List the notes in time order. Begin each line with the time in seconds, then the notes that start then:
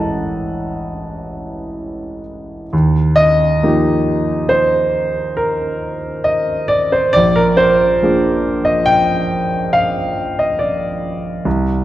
Already playing: A1 E3 G#3 C#4 E4 A4 D#5 F#5 A5
2.73 D#2
3.16 D#5
3.63 F3 A#3 D#4 G4
4.49 C5
5.37 A#4
6.24 D#5
6.68 D5
6.92 C5
7.13 A#1 D5
7.36 A#4
7.57 C5
8.02 F3 A#3 D4 G#4
8.65 D#5
8.86 G5
9.73 F5
10.39 D#5
10.59 D5
11.45 C2